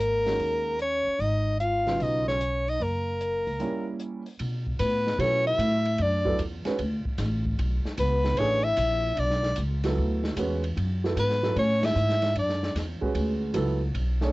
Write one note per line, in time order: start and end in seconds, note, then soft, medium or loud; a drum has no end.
0.00 0.35 G#1 medium
0.00 0.77 A#3 medium
0.00 0.77 A#4 medium
0.00 closed hi-hat soft
0.26 0.77 D#3 soft
0.26 0.77 G#3 soft
0.26 0.77 C#4 soft
0.26 0.77 F#4 medium
0.26 snare soft
0.26 open hi-hat soft
0.39 1.02 D#2 medium
0.39 open hi-hat soft
0.79 1.22 C#4 medium
0.79 1.23 C#5 medium
0.79 closed hi-hat soft
1.07 muted upright bass stroke soft
1.19 1.95 G#1 medium
1.19 1.60 D#4 medium
1.19 1.60 D#5 medium
1.19 open hi-hat soft
1.60 2.01 F4 medium
1.60 2.04 F5 medium
1.60 closed hi-hat soft
1.86 2.37 C#3 medium
1.86 2.37 F#3 soft
1.86 2.38 B3 soft
1.86 2.38 F4 medium
1.86 snare soft
1.86 open hi-hat soft
1.99 2.76 B1 medium
1.99 2.26 D#4 medium
1.99 2.27 D#5 medium
1.99 open hi-hat soft
2.28 2.71 C#4 medium
2.28 2.71 C#5 medium
2.28 snare soft
2.41 closed hi-hat soft
2.68 2.82 D#4 medium
2.68 2.84 D#5 medium
2.68 open hi-hat soft
2.80 3.43 F#1 medium
2.80 4.00 A#3 medium
2.80 4.01 A#4 medium
2.80 open hi-hat soft
3.21 closed hi-hat soft
3.47 3.59 C#2 medium
3.47 open hi-hat soft
3.60 4.21 G3 medium
3.60 4.22 A#3 medium
3.60 4.22 C#4 medium
3.60 4.22 E4 medium
3.60 open hi-hat soft
4.00 closed hi-hat soft
4.26 open hi-hat soft
4.39 4.79 B2 medium
4.39 ride medium
4.67 kick soft
4.79 5.18 A2 medium
4.79 5.22 B3 medium
4.79 5.22 B4 medium
4.79 hi-hat pedal soft
4.79 ride medium
5.07 snare soft
5.18 5.57 B2 medium
5.18 5.80 F#3 medium
5.18 5.81 B3 soft
5.18 5.47 C#4 medium
5.18 5.81 E4 medium
5.18 5.81 A4 medium
5.18 5.46 C#5 medium
5.18 ride medium
5.47 6.02 E4 medium
5.47 6.04 E5 loud
5.58 5.97 A2 medium
5.58 hi-hat pedal medium
5.58 ride medium
5.85 ride soft
5.98 6.38 F#2 medium
5.98 6.39 D4 medium
5.98 ride medium
6.03 6.41 D5 medium
6.25 6.37 F#3 medium
6.25 6.37 B3 medium
6.25 6.38 E4 medium
6.25 6.38 A4 medium
6.25 kick medium
6.39 6.64 E2 medium
6.39 hi-hat pedal medium
6.39 ride medium
6.65 6.77 G#3 medium
6.65 6.77 C#4 medium
6.65 6.78 F#4 medium
6.65 6.78 B4 medium
6.65 muted upright bass stroke soft
6.65 snare soft
6.65 ride soft
6.79 7.04 D2 medium
6.79 ride medium
7.05 muted upright bass stroke soft
7.05 kick medium
7.18 7.57 A1 medium
7.18 snare soft
7.18 hi-hat pedal medium
7.18 ride medium
7.45 kick medium
7.59 7.84 B1 medium
7.59 ride medium
7.85 muted upright bass stroke soft
7.85 snare soft
7.97 8.37 C#2 medium
7.97 8.38 B3 medium
7.97 8.40 B4 medium
7.97 hi-hat pedal medium
7.97 ride medium
8.24 snare soft
8.37 8.76 A1 medium
8.37 8.62 E3 medium
8.37 8.62 A3 medium
8.37 8.65 C#4 medium
8.37 8.63 D4 medium
8.37 8.63 G#4 medium
8.37 8.66 C#5 medium
8.37 ride medium
8.63 9.17 E4 medium
8.63 9.21 E5 loud
8.76 9.16 A#1 medium
8.76 hi-hat pedal medium
8.76 ride medium
9.16 9.56 B1 medium
9.16 9.56 D4 medium
9.16 9.58 D5 medium
9.16 ride medium
9.30 snare soft
9.43 snare soft
9.56 9.96 C#2 medium
9.56 hi-hat pedal medium
9.56 ride medium
9.84 10.35 F#3 medium
9.84 10.35 B3 medium
9.84 10.35 E4 medium
9.84 10.35 A4 medium
9.84 snare soft
9.84 ride medium
9.98 10.36 D2 medium
10.24 snare soft
10.36 10.75 E2 medium
10.36 10.61 G#3 medium
10.36 10.61 C#4 medium
10.36 10.62 F#4 medium
10.36 10.62 B4 medium
10.36 hi-hat pedal medium
10.36 ride medium
10.64 ride soft
10.77 11.15 F#2 medium
10.77 ride medium
11.04 11.15 F#3 medium
11.04 11.16 B3 medium
11.04 11.16 E4 medium
11.04 11.17 A4 medium
11.04 snare soft
11.16 11.55 G#2 medium
11.16 11.53 B3 medium
11.16 11.55 B4 medium
11.16 hi-hat pedal medium
11.16 ride medium
11.30 snare soft
11.43 11.55 F#3 medium
11.43 11.55 B3 medium
11.43 11.55 E4 medium
11.43 11.56 A4 medium
11.43 snare soft
11.56 11.95 A2 medium
11.56 11.83 C#4 medium
11.56 11.87 C#5 medium
11.56 ride medium
11.81 12.35 E4 medium
11.81 snare medium
11.81 ride medium
11.86 12.37 E5 loud
11.95 12.34 G#2 medium
11.95 hi-hat pedal medium
12.09 snare soft
12.22 snare soft
12.22 ride soft
12.35 12.74 F#2 medium
12.35 12.73 D4 medium
12.35 12.74 D5 medium
12.35 ride medium
12.49 snare soft
12.63 snare soft
12.75 13.00 E2 medium
12.75 snare soft
12.75 hi-hat pedal soft
12.75 ride medium
13.01 13.52 G#3 medium
13.01 13.52 C#4 medium
13.01 13.52 F#4 medium
13.01 13.53 B4 medium
13.01 muted upright bass stroke soft
13.01 kick soft
13.14 13.53 D2 medium
13.14 ride medium
13.54 13.93 C#2 medium
13.54 13.79 F#3 medium
13.54 13.79 B3 medium
13.54 13.79 E4 medium
13.54 13.80 A4 medium
13.54 hi-hat pedal medium
13.54 ride medium
13.95 14.32 B1 medium
13.95 ride medium
14.21 14.32 A3 medium
14.21 14.32 D4 medium
14.21 14.32 G#4 medium
14.21 14.32 C#5 medium
14.21 snare soft